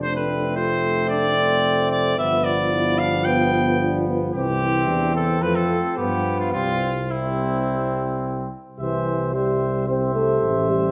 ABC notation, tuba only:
X:1
M:4/4
L:1/8
Q:1/4=110
K:C
V:1 name="Tuba" clef=bass
F,,,8 | G,,,8 | C,,2 E,,2 F,,2 G,,2 | C,,6- C,, z |
C,,6 A,,,2 |]